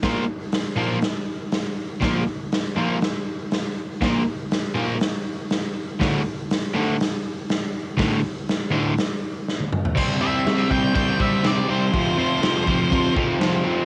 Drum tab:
CC |----------------|----------------|----------------|----------------|
HH |o---o---o---o---|o---o---o---o---|o---o---o---o---|o---o---o---o---|
SD |o---o---o---o---|o---o---o---o---|o---o---o---o---|o---o---o---o---|
T1 |----------------|----------------|----------------|----------------|
T2 |----------------|----------------|----------------|----------------|
FT |----------------|----------------|----------------|----------------|
BD |o---------------|o---------------|o---------------|o---------------|

CC |----------------|x---x---x---x---|x---x---x---x---|
HH |o---o---o-------|----------------|----------------|
SD |o---o---o---o---|----o-------o---|----o-------o---|
T1 |-------------o--|----------------|----------------|
T2 |--------------o-|----------------|----------------|
FT |---------------o|----------------|----------------|
BD |o---------------|o-----o-o-o-----|o-----o-o-o-----|